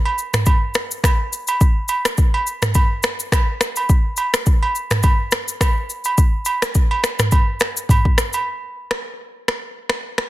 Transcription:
0.05 high agogo
0.18 shaker
0.34 finger snap, cross-stick, mid tom, shaker
0.46 kick, high agogo, shaker
0.74 finger snap, cross-stick, shaker
0.91 shaker
1.04 finger snap, kick, cross-stick, high agogo, shaker
1.33 shaker
1.47 high agogo, shaker
1.61 kick, shaker
1.88 high agogo, shaker
2.05 finger snap, cross-stick, shaker
2.18 kick, shaker
2.34 high agogo
2.47 shaker
2.62 finger snap, cross-stick, mid tom, shaker
2.74 kick, high agogo, shaker
3.03 finger snap, cross-stick, shaker
3.20 shaker
3.32 finger snap, kick, cross-stick, high agogo, shaker
3.61 finger snap, cross-stick, shaker
3.76 high agogo, shaker
3.89 kick, shaker
4.17 high agogo, shaker
4.34 finger snap, cross-stick, shaker
4.46 kick, shaker
4.63 high agogo
4.75 shaker
4.91 finger snap, cross-stick, mid tom, shaker
5.03 kick, high agogo, shaker
5.31 finger snap, cross-stick, shaker
5.48 shaker
5.61 finger snap, kick, cross-stick, high agogo, shaker
5.90 shaker
6.04 high agogo, shaker
6.18 kick, shaker
6.45 high agogo, shaker
6.62 finger snap, cross-stick, shaker
6.75 kick, shaker
6.91 high agogo
7.04 finger snap, cross-stick, shaker
7.19 finger snap, cross-stick, mid tom, shaker
7.31 kick, high agogo, shaker
7.60 finger snap, cross-stick, shaker
7.77 shaker
7.89 kick, mid tom, high agogo, shaker
8.05 kick
8.18 finger snap, cross-stick, shaker
8.33 high agogo, shaker
8.91 finger snap, cross-stick
9.48 finger snap, cross-stick
9.89 finger snap, cross-stick
10.18 finger snap, cross-stick

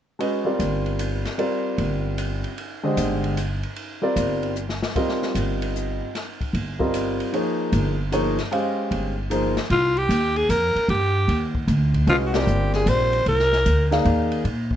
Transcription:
0.19 G#3 C#4 F#4 B4 D#5, ride
0.45 G3 C4 F4 A#4 D5
0.59 G1, hi-hat pedal, ride
0.86 ride
0.99 hi-hat pedal, ride
1.25 snare, ride
1.38 G3 C4 F4 A#4 D5, ride
1.78 G1, ride
2.18 hi-hat pedal, ride
2.44 ride
2.58 ride
2.83 D3 G#3 G4 C5 D#5
2.97 G1, hi-hat pedal, ride
3.24 ride
3.37 hi-hat pedal, ride
3.63 ride
3.76 ride
4.02 G3 C4 F4 A#4 D5
4.16 G1, hi-hat pedal, ride
4.43 ride
4.56 hi-hat pedal
4.69 snare
4.83 snare
4.96 G3 C4 F4 A#4 D#5, kick, ride
5.09 snare
5.22 snare
5.35 G1, hi-hat pedal, ride
5.62 ride
5.75 hi-hat pedal
6.15 snare, ride
6.41 kick, ride
6.53 G1, ride
6.79 G3 C4 F4 A#4 D#5, kick
6.94 hi-hat pedal, ride
7.20 ride
7.33 F3 A#3 D#4 G#4 C#5, ride
7.72 G1, hi-hat pedal, ride
8.12 F3 A#3 D#4 G#4 C#5, hi-hat pedal, ride
8.38 snare, ride
8.51 G#3 C#4 G4 C5 F5, ride
8.91 G1, ride
9.30 F3 A#3 D#4 G#4 C5, hi-hat pedal, ride
9.57 snare, ride
9.70 C2 F4, ride
9.97 G4, ride
10.09 D#2, hi-hat pedal, ride
10.36 G#4, ride
10.49 F2 A#4, hi-hat pedal, ride
10.75 muted upright bass stroke, ride
10.88 G2 G4, ride
11.28 D#2, ride
11.55 kick
11.68 D2, hi-hat pedal, ride
11.94 kick, ride
12.07 C2 G#3 C#4 F4 F#4 B4 D#5, ride
12.26 F#4
12.34 G3 C4 F4 G4 A#4 D5, snare, ride
12.47 G1, hi-hat pedal
12.73 G#4, snare, ride
12.86 A#1 C5, hi-hat pedal, ride
13.13 ride
13.26 C2 A#4, ride
13.39 snare
13.53 snare
13.66 D2, hi-hat pedal, ride
13.91 A#3 D#4 G#4 D5 F5, snare, ride
14.05 D#2, ride
14.32 ride
14.45 A#2, ride
14.71 kick

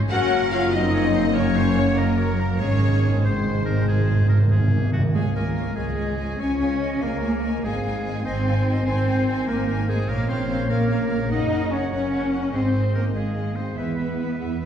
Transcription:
0.10 F#1 F#2 F#3 A#3 C#4 F#4 A#4 F#5
0.52 C#4 F4 F5
0.72 C4 D#4 D#5
0.94 C#5
1.15 C5
1.34 A#3 C#4 A#4 C#5
1.56 C5
1.78 C#5
1.96 F#3 A#3 A#4 D#5
2.18 C#5
2.40 A#4
2.59 G#1 G#2 D#3 G#3 A#3 C#4 G#4 C#5
2.69 G#2
2.77 G#2
2.85 G#2
2.92 G#2
3.00 G#2
3.15 G#2
3.23 G#2 G#3 C4 C5
3.31 G#2
3.38 G#2
3.46 G#2
3.53 G#2
3.61 G#2
3.65 G#2 A#4
3.76 G#2
3.84 G#2 G#4
3.92 G#2
3.99 G#2
4.07 G#2
4.14 G#2
4.22 G#2
4.29 G#2 A#4
4.37 G#2
4.45 G#2
4.51 G#2 G#4
4.60 G#2
4.68 G#2
4.76 G#2
4.84 G#2
4.92 G#2 F#4
4.99 G#2
5.12 C#2 F3 G#3 F4 G#4 C#5 F5 G#5
5.32 A#3 F4 A#4 C#5 G#5
5.36 A#4
5.55 F4 C#5 G#5
5.75 C#2 G#3 F4 G#4 C#5 D#5 G#5
5.96 F4 C#5 G#5
6.18 F4 C#5 G#5
6.39 C#2 C#4 F4 C#5 G#5
6.59 F4 C#5 F5 G#5
6.80 F4 C#5 D#5 G#5
7.00 C#2 A#3 F4 A#4 C#5 F5 G#5
7.21 F4 C#5 G#5
7.41 F4 C#5 D#5 G#5
7.62 G#1 D#3 G#3 C4 D#4 G#4 C5 F5 G#5
7.83 D#4 C5 G#5
8.04 D#4 C5 G#5
8.24 G#1 C4 D#4 C5 D#5 G#5
8.45 D#4 C5 F5 G#5
8.67 D#4 C5 D#5 G#5
8.85 G#1 C4 D#4 C5 G#5
9.07 D#4 C5 G#5
9.28 D#4 C5 G#5
9.47 G#1 A#3 D#4 A#4 C5 G#5
9.68 D#4 C5 G#5
9.89 G#3 D#4 G#4 C5 G#5
10.08 A#1 C#3 A#3 A#4 C#5 F5
10.28 C3 C4 A#4 C5 C#5 F5
10.49 A#4 C#5 F5
10.70 A#1 A#3 A#4 C#5 F5
10.90 A#4 C#5 F5
11.09 A#4 C#5 F5
11.30 F#1 D#4 A#4 C#5 D#5 F#5
11.50 A#4 C#5 F#5
11.71 C#4 A#4 C#5 F#5
11.91 F#1 C#4 A#4 C#5 F#5
12.13 A#4 C#5 F#5
12.32 A#4 C#5 F#5
12.51 G#1 D#3 G#3 C4 G#4 C5 D#5
12.72 G#4 D#5
12.93 A#3 G#4 A#4 D#5
13.13 G#1 G#3 G#4 D#5 F5
13.36 G#4 D#5
13.56 C4 G#4 C5 D#5
13.76 E2 E3 B3 G#4 B4 E5
13.97 G#4 B4 E5
14.19 G#4 B4 E5
14.40 E2 G#4 B4 E5 F#5
14.61 G#4 B4 E5

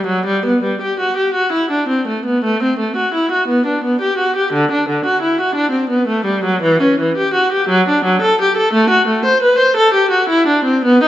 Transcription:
0.06 F#3
0.26 G3
0.46 B3
0.64 G3
0.81 G4
1.00 F#4
1.16 G4
1.34 F#4
1.52 E4
1.71 D4
1.88 C4
2.08 A3
2.25 B3
2.44 A3
2.63 C4
2.79 A3
2.96 F#4
3.14 E4
3.31 F#4
3.48 B3
3.66 D4
3.84 B3
4.01 G4
4.18 F#4
4.36 G4
4.53 D3
4.72 D4
4.89 D3
5.05 F#4
5.22 E4
5.41 F#4
5.55 D4
5.71 C4
5.89 B3
6.08 A3
6.25 G3
6.44 F#3
6.62 E3
6.81 C#4
7.00 E3
7.17 G4
7.34 F#4
7.52 G4
7.69 F#3
7.89 D4
8.04 F#3
8.22 A4
8.41 G4
8.57 A4
8.73 A3
8.90 F#4
9.07 A3
9.25 C5
9.42 B4
9.58 C5
9.77 A4
9.94 G4
10.10 F#4
10.29 E4
10.47 D4
10.65 C4
10.85 B3
11.03 D#4

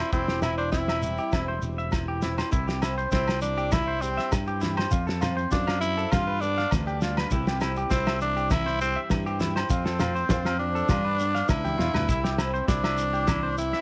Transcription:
Already playing: E3 G3 C4 E4
0.00 C5
0.12 E1 E3 C4 E4, kick, shekere
0.28 G4, snare
0.42 C4 E4, snare, low agogo, shekere
0.58 D4 C5, shekere
0.72 C4 E4, kick, snare, shekere
0.88 E5, snare, low agogo
1.01 G3 C4, shekere
1.18 G4, shekere
1.32 E1 C4 E4, kick, snare, low agogo, shekere
1.48 C5
1.62 E1 E4, shekere
1.78 E5, shekere
1.91 E3 E4, kick, snare, low agogo, shekere
2.08 G4
2.21 C4 E4, snare, shekere
2.38 C5, snare, low agogo, shekere
2.51 C2 C3 E4, kick, muted conga, shekere
2.67 G4, snare, shekere
2.82 C4 E4, snare, low agogo, shekere
2.98 C5, shekere
3.12 C2 C4 E4, kick, snare, shekere
3.28 snare, low agogo, shekere
3.42 G3 D4, muted conga, shekere
3.58 G4, shekere
3.72 E4, kick, snare, muted conga, high conga, low agogo, shekere
3.88 C5
4.02 C4 G4, muted conga, shekere
4.17 E5, snare, shekere
4.32 G2 E4, kick, snare, high conga, low agogo, shekere
4.47 G4, shekere
4.61 E4 G4, snare, high conga, shekere
4.77 C5, snare, low agogo, shekere
4.91 F2 F4, kick, muted conga, shekere
5.07 A4, snare, shekere
5.21 C4 F4, snare, low conga, low agogo, shekere
5.37 C5, shekere
5.51 F#2 D4 F4, kick, snare, high conga, shekere
5.67 F5, snare, low agogo, shekere
5.81 F3 E4, muted conga, shekere
5.98 A4, shekere
6.11 G2 F4, kick, snare, muted conga, high conga, low conga, low agogo, shekere
6.27 B4
6.41 B3 D4, muted conga, shekere
6.58 F5, snare, shekere
6.71 D2 D4, kick, snare, high conga, low agogo, shekere
6.87 G4, shekere
7.01 G3 F4, snare, shekere
7.17 B4, snare, low agogo, shekere
7.31 C2 C3 E3 C4 E4 G4, kick, muted conga, shekere
7.46 G4, snare, shekere
7.61 C4 E4, snare, low agogo, shekere
7.76 G4, shekere
7.90 C2 C4 E4, kick, snare, shekere
8.06 E5, snare, low agogo, shekere
8.21 E3 D4, muted conga, shekere
8.37 G4, shekere
8.50 G2 E4, kick, snare, muted conga, high conga, low agogo, shekere
8.66 C5, snare
8.81 C4 G4, muted conga, shekere
8.96 E5
9.10 G2 E4, kick, snare, high conga, low agogo, shekere
9.26 G4, shekere
9.40 E4 G4, snare, high conga, shekere
9.56 C5, snare, low agogo, shekere
9.69 F2 C4 F4, kick, muted conga, shekere
9.85 A4, snare, shekere
10.00 A3 F4, snare, low conga, low agogo, shekere
10.15 C5, shekere
10.29 F2 C4 F4, kick, snare, high conga, shekere
10.45 F5, snare, low agogo, shekere
10.59 F3 D4, muted conga
10.75 A4, shekere
10.89 G2 F4, kick, snare, muted conga, high conga, low conga, low agogo, shekere
11.05 B4
11.19 B3, muted conga, shekere
11.35 F5, snare, shekere
11.49 C#2 D4 E4, kick, snare, high conga, low agogo, shekere
11.64 G4, high conga, shekere
11.78 E2 G3 F4, snare, low conga
11.94 D2 B4, snare, low conga, low agogo, shekere
12.08 C2 C3 E4, kick, muted conga, shekere
12.24 G4, snare, shekere
12.38 C4 E4, snare, low agogo, shekere
12.54 C5, shekere
12.68 C2 D4 E4, kick, snare, shekere
12.84 E5, snare, low agogo, shekere
12.98 E3, muted conga, shekere
13.13 G4, shekere
13.27 G2 E4, kick, snare, muted conga, high conga, low agogo, shekere
13.43 C5
13.58 C4 E4, muted conga, shekere
13.73 E5, snare, shekere

